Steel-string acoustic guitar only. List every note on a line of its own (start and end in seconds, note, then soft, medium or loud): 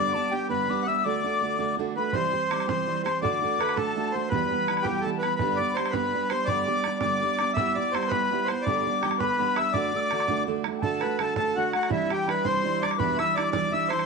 0.00 0.14 G2 medium
0.00 0.15 D3 medium
0.00 0.15 G3 medium
0.00 0.14 B3 medium
0.00 0.14 D4 medium
0.00 0.13 G4 medium
0.14 0.30 G3 soft
0.14 0.31 B3 soft
0.14 0.32 D4 soft
0.14 0.32 G4 medium
0.32 0.49 G3 soft
0.32 0.49 B3 medium
0.32 0.48 D4 medium
0.32 0.47 G4 medium
0.49 0.70 G2 medium
0.49 0.69 D3 soft
0.49 0.67 G3 medium
0.49 0.68 B3 medium
0.49 0.69 D4 medium
0.49 0.69 G4 medium
0.69 0.86 G3 medium
0.69 0.87 B3 medium
0.69 0.86 D4 medium
0.69 0.85 G4 medium
0.87 1.05 G3 soft
0.87 1.05 B3 soft
0.87 1.04 D4 soft
0.87 1.04 G4 soft
1.05 1.24 D3 medium
1.05 1.24 A3 medium
1.05 1.24 D4 medium
1.05 1.23 F#4 medium
1.24 1.41 A3 soft
1.24 1.41 D4 soft
1.24 1.41 F#4 medium
1.41 1.59 D3 medium
1.41 1.59 A3 medium
1.41 1.57 D4 medium
1.41 1.57 F#4 medium
1.59 1.77 D3 medium
1.59 1.78 A3 medium
1.59 1.78 D4 medium
1.59 1.78 F#4 medium
1.78 1.96 D3 medium
1.78 1.96 A3 medium
1.78 1.96 D4 medium
1.78 1.94 F#4 medium
1.95 2.14 A3 soft
1.95 2.14 D4 soft
1.95 2.13 F#4 medium
2.13 2.33 C3 medium
2.13 2.33 E3 medium
2.13 2.34 G3 medium
2.13 2.33 C4 medium
2.13 2.32 G4 medium
2.33 2.51 G3 soft
2.33 2.51 C4 soft
2.33 2.50 G4 soft
2.51 2.67 E3 soft
2.51 2.67 G3 medium
2.51 2.66 C4 medium
2.51 2.66 G4 medium
2.67 2.88 C3 soft
2.67 2.86 E3 medium
2.67 2.87 G3 medium
2.67 2.87 C4 medium
2.67 2.87 G4 medium
2.87 3.05 E3 medium
2.87 3.05 G3 medium
2.87 3.05 C4 medium
2.87 3.04 G4 medium
3.05 3.22 G3 soft
3.05 3.22 C4 soft
3.05 3.22 G4 soft
3.22 3.42 D3 medium
3.22 3.42 A3 medium
3.22 3.41 D4 medium
3.22 3.40 F#4 medium
3.42 3.58 A3 soft
3.42 3.58 D4 soft
3.42 3.59 F#4 medium
3.58 3.76 D3 medium
3.58 3.75 A3 soft
3.58 3.75 D4 medium
3.76 3.94 D3 medium
3.76 3.95 A3 medium
3.76 3.96 D4 medium
3.76 3.96 F#4 medium
3.95 4.13 D3 soft
3.95 4.14 A3 medium
3.95 4.14 D4 medium
3.95 4.12 F#4 medium
4.14 4.31 A3 soft
4.14 4.32 D4 soft
4.14 4.31 F#4 medium
4.31 4.51 E2 medium
4.31 4.51 B2 medium
4.31 4.51 E3 medium
4.31 4.51 G3 medium
4.31 4.51 B3 medium
4.31 4.50 G4 medium
4.52 4.67 E3 soft
4.52 4.68 G3 soft
4.52 4.69 B3 medium
4.52 4.69 G4 medium
4.69 4.86 E3 medium
4.69 4.86 G3 medium
4.69 4.85 B3 medium
4.69 4.85 G4 medium
4.86 5.06 E2 soft
4.86 5.06 B2 soft
4.86 5.04 E3 medium
4.86 5.04 G3 medium
4.86 5.06 B3 medium
4.86 5.05 G4 medium
5.05 5.22 E3 medium
5.05 5.23 G3 medium
5.05 5.23 B3 medium
5.05 5.22 G4 medium
5.25 5.40 E3 soft
5.25 5.39 G3 soft
5.25 5.40 B3 soft
5.40 5.60 G2 medium
5.40 5.60 D3 medium
5.40 5.60 G3 medium
5.40 5.59 B3 medium
5.40 5.59 D4 medium
5.40 5.58 G4 medium
5.59 5.75 G3 soft
5.59 5.76 B3 soft
5.59 5.77 D4 medium
5.59 5.77 G4 medium
5.77 5.94 G3 soft
5.77 5.94 B3 medium
5.77 5.93 D4 soft
5.77 5.93 G4 medium
5.94 6.15 G2 soft
5.94 6.14 D3 medium
5.94 6.12 G3 medium
5.94 6.13 B3 medium
5.94 6.14 D4 medium
5.94 6.14 G4 medium
6.13 6.31 G3 medium
6.13 6.32 B3 medium
6.13 6.31 D4 medium
6.13 6.30 G4 medium
6.31 6.48 G3 soft
6.31 6.48 B3 soft
6.31 6.48 D4 soft
6.31 6.49 G4 soft
6.48 6.68 G2 medium
6.48 6.68 D3 medium
6.48 6.68 G3 medium
6.48 6.68 B3 medium
6.48 6.67 D4 medium
6.48 6.66 G4 medium
6.67 6.84 G3 soft
6.67 6.84 B3 soft
6.67 6.85 D4 medium
6.67 6.85 G4 medium
6.85 7.03 G3 medium
6.85 7.02 B3 medium
6.85 7.02 D4 medium
6.85 7.02 G4 medium
7.03 7.23 G2 soft
7.03 7.23 D3 medium
7.03 7.20 G3 medium
7.03 7.20 B3 soft
7.03 7.21 D4 medium
7.03 7.22 G4 medium
7.21 7.39 G3 medium
7.21 7.40 B3 medium
7.21 7.39 D4 medium
7.21 7.38 G4 medium
7.39 7.56 G3 soft
7.39 7.56 B3 soft
7.39 7.57 D4 soft
7.39 7.57 G4 soft
7.57 7.77 G3 medium
7.57 7.77 B3 medium
7.57 7.76 E4 medium
7.57 7.75 G4 medium
7.76 7.93 B3 soft
7.76 7.94 E4 soft
7.76 7.94 G4 medium
7.93 8.11 G3 medium
7.93 8.11 B3 medium
7.93 8.11 E4 medium
7.93 8.11 G4 medium
8.12 8.30 G3 soft
8.12 8.31 B3 medium
8.12 8.31 E4 soft
8.12 8.31 G4 medium
8.31 8.49 G3 medium
8.31 8.49 B3 medium
8.31 8.49 E4 medium
8.31 8.48 G4 medium
8.49 8.66 B3 soft
8.49 8.67 E4 soft
8.49 8.66 G4 soft
8.66 8.86 G2 medium
8.66 8.86 D3 medium
8.66 8.86 G3 medium
8.66 8.86 B3 medium
8.66 8.86 D4 medium
8.66 8.85 G4 medium
8.87 9.02 G3 soft
8.87 9.03 B3 soft
8.87 9.04 D4 medium
8.87 9.03 G4 soft
9.03 9.20 G3 medium
9.03 9.19 B3 medium
9.03 9.19 D4 medium
9.03 9.19 G4 medium
9.20 9.40 G2 medium
9.20 9.40 D3 soft
9.20 9.37 G3 medium
9.20 9.38 B3 medium
9.20 9.39 D4 medium
9.20 9.39 G4 medium
9.38 9.56 G3 medium
9.38 9.56 B3 medium
9.38 9.56 D4 medium
9.38 9.55 G4 medium
9.56 9.74 G3 soft
9.56 9.74 B3 soft
9.56 9.74 D4 medium
9.56 9.74 G4 medium
9.75 9.94 D3 medium
9.75 9.94 A3 medium
9.75 9.94 D4 medium
9.75 9.93 F#4 medium
9.96 10.11 A3 soft
10.12 10.29 D3 medium
10.12 10.29 A3 medium
10.12 10.28 D4 medium
10.12 10.28 F#4 medium
10.29 10.46 D3 medium
10.29 10.47 A3 medium
10.29 10.47 D4 medium
10.29 10.48 F#4 medium
10.47 10.65 D3 medium
10.47 10.65 A3 medium
10.47 10.65 D4 medium
10.47 10.64 F#4 medium
10.65 10.82 A3 soft
10.65 10.83 D4 soft
10.65 10.83 F#4 soft
10.83 11.02 D3 medium
10.83 11.03 A3 medium
10.83 11.02 D4 medium
10.83 11.01 F#4 medium
11.03 11.19 A3 soft
11.03 11.19 D4 soft
11.03 11.20 F#4 medium
11.19 11.37 D3 medium
11.19 11.36 A3 medium
11.19 11.36 D4 medium
11.19 11.35 F#4 medium
11.37 11.55 D3 soft
11.37 11.56 A3 medium
11.37 11.56 D4 medium
11.37 11.56 F#4 medium
11.56 11.74 D3 medium
11.56 11.74 A3 medium
11.56 11.73 D4 medium
11.56 11.72 F#4 medium
11.73 11.90 A3 soft
11.73 11.90 D4 soft
11.73 11.90 F#4 soft
11.89 12.10 C3 medium
11.89 12.10 E3 medium
11.89 12.10 G3 medium
11.89 12.10 D4 medium
11.89 12.09 E4 medium
12.10 12.26 G3 soft
12.10 12.27 E4 medium
12.26 12.44 E3 soft
12.26 12.44 G3 medium
12.26 12.44 D4 medium
12.26 12.43 E4 medium
12.45 12.65 C3 soft
12.45 12.63 E3 soft
12.45 12.63 G3 medium
12.45 12.64 D4 medium
12.45 12.64 E4 medium
12.64 12.82 E3 medium
12.64 12.82 G3 medium
12.64 12.82 D4 medium
12.64 12.81 E4 medium
12.82 12.99 G3 soft
12.82 12.99 D4 medium
12.82 12.99 E4 soft
12.99 13.19 E2 medium
12.99 13.19 B2 medium
12.99 13.19 E3 medium
12.99 13.19 G3 medium
12.99 13.19 D4 medium
12.99 13.18 E4 medium
13.19 13.35 E3 soft
13.19 13.36 G3 medium
13.19 13.37 D4 medium
13.19 13.36 E4 soft
13.36 13.53 E3 medium
13.36 13.53 G3 medium
13.36 13.52 D4 medium
13.36 13.52 E4 medium
13.53 13.74 E2 soft
13.53 13.74 B2 medium
13.53 13.71 E3 medium
13.53 13.72 G3 medium
13.53 13.72 D4 medium
13.53 13.73 E4 medium
13.72 13.90 E3 medium
13.72 13.90 G3 medium
13.72 13.90 D4 medium
13.72 13.89 E4 medium
13.91 14.06 E3 soft
13.91 14.06 G3 soft
13.91 14.06 D4 soft
13.91 14.06 E4 soft